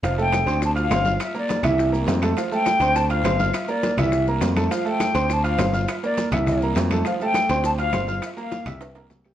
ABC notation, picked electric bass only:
X:1
M:4/4
L:1/8
Q:1/4=205
K:F
V:1 name="Picked electric bass" clef=bass
F,,,3 D,,3 G,,,2 | z3 C,,3 F,,2 | z3 D,,3 G,,,2 | z3 C,,3 F,,2 |
z3 D,,3 G,,,2 | z3 C,,3 F,,2 | z3 D,,3 G,,,2 | z3 C,,3 C,,2 |]